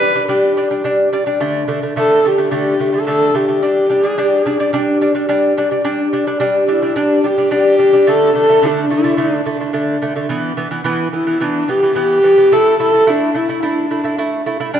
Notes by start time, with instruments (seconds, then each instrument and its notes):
Already playing: horsehead fiddle B4
0.01 lute G3 D4
0.15 lute G3 D4
0.28 lute G3 D4, horsehead fiddle G4
0.57 lute G3 D4
0.70 lute G3 D4
0.84 lute G3 D4
1.13 lute G3 D4
1.26 lute G3 D4
1.40 lute D3 A3
1.68 lute D3 A3
1.83 lute D3 A3
1.96 lute D3 A3, horsehead fiddle A4
2.24 lute D3 A3, horsehead fiddle G4
2.38 lute D3 A3
2.51 lute D3 A3, horsehead fiddle G4
2.80 lute D3 A3
2.93 lute D3 A3, horsehead fiddle A4
3.07 lute D3 A3, horsehead fiddle A4
3.34 lute D3 A3, horsehead fiddle G4
3.48 lute D3 A3
3.62 lute G3 D4
3.90 lute G3 D4
4.03 lute G3 D4, horsehead fiddle G#4
4.18 lute G3 D4
4.23 horsehead fiddle G4
4.43 lute G3 D4, horsehead fiddle G#4
4.60 lute G3 D4, horsehead fiddle G4
4.73 lute G3 D4
5.01 lute G3 D4
5.15 lute G3 D4
5.29 lute G3 D4
5.57 lute G3 D4
5.71 lute G3 D4
5.84 lute G3 D4
6.13 lute G3 D4
6.27 lute G3 D4
6.40 lute G3 D4
6.68 lute G3 D4, horsehead fiddle E4
6.82 lute G3 D4
6.96 lute G3 D4, horsehead fiddle D4
7.24 lute G3 D4, horsehead fiddle G4
7.37 lute G3 D4
7.51 lute G3 D4, horsehead fiddle G4
7.78 lute G3 D4
7.93 lute G3 D4
8.07 lute D3 A3, horsehead fiddle A4
8.35 lute D3 A3, horsehead fiddle A4
8.49 lute D3 A3
8.62 lute D3 A3, horsehead fiddle D4
8.90 lute D3 A3, horsehead fiddle E4
9.04 lute D3 A3
9.17 lute D3 A3
9.22 horsehead fiddle D4
9.46 lute D3 A3
9.60 lute D3 A3
9.73 lute D3 A3
10.02 lute D3 A3
10.16 lute D3 A3
10.29 lute E3 B3
10.57 lute E3 B3
10.71 lute E3 B3
10.84 lute E3 B3
11.13 lute E3 B3, horsehead fiddle E4
11.27 lute E3 B3
11.41 lute E3 B3, horsehead fiddle D4
11.68 lute E3 B3, horsehead fiddle G4
11.83 lute E3 B3
11.95 lute E3 B3, horsehead fiddle G4
12.23 lute E3 B3
12.37 lute E3 B3
12.52 lute A3 E4, horsehead fiddle A4
12.79 lute A3 E4, horsehead fiddle A4
12.93 lute A3 E4
13.07 lute A3 E4, horsehead fiddle D4
13.35 lute A3 E4, horsehead fiddle E4
13.49 lute A3 E4
13.63 lute A3 E4, horsehead fiddle D4
13.91 lute A3 E4
14.04 lute A3 E4
14.18 lute A3 E4
14.46 lute A3 E4
14.60 lute A3 E4
14.74 lute G3 D4